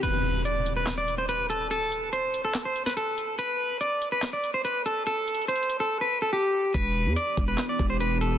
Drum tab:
CC |x-----------------------------------------------|------------------------------------------------|------------------------------------------------|------------------------------------------------|
HH |x-----------x-----x-----x-----x-----x-----x-----|x-----x-----x-----x-----x-----x-----x-----x-----|x-----------x-----x-----x-----x-----x-----x-----|x-----x-x-x-x-x-x-x-----------------------------|
CP |------------------------x-----------------------|------------------------x-----------------------|------------------------x-----------------------|------------------------------------------------|
SD |------------------------o-----------------------|------------------------o--------o--------------|------------------------o-----------------------|------------------------------------------------|
BD |------------------------------------------------|------------------------------------------------|------------------------------------------------|------------------------------------------------|

CC |------------------------------------------------|
HH |x-----------x-----x-----x-----x-----x-----x-----|
CP |------------------------x-----------------------|
SD |------------------------o-----------------------|
BD |o-----------------o-----------o-----------------|